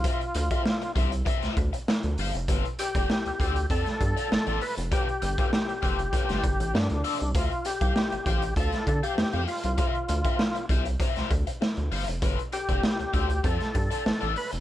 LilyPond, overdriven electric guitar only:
\new Staff \with { instrumentName = "Overdriven electric guitar" } { \time 4/4 \key d \dorian \tempo 4 = 98 <f' c'' e''>16 r8 <f' c'' e''>16 r8 <f' c'' e''>16 r16 <f' c'' e''>8 r4 <f' c'' f''>16 r16 | <f' a' b'>16 r8 <f' a' d''>16 r8 <f' a' d''>16 r16 <f' a' d''>16 r8 <f' a' d''>16 r16 <f' a' d''>16 r8 | <f' a' b'>16 r8 <f' a' b'>16 r8 <f' a' b'>16 r16 <f' a' b'>8 r4 <f' a' d''>16 r16 | <f' c'' e''>16 r8 <f' c'' f''>16 r8 <f' c'' f''>16 r16 <f' c'' f''>16 r8 <f' c'' f''>16 r16 <f' c'' f''>16 r8 |
<f' c'' e''>16 r8 <f' c'' e''>16 r8 <f' c'' e''>16 r16 <f' c'' e''>8 r4 <f' c'' f''>16 r16 | <f' a' b'>16 r8 <f' a' d''>16 r8 <f' a' d''>16 r16 <f' a' d''>16 r8 <f' a' d''>16 r16 <f' a' d''>16 r8 | }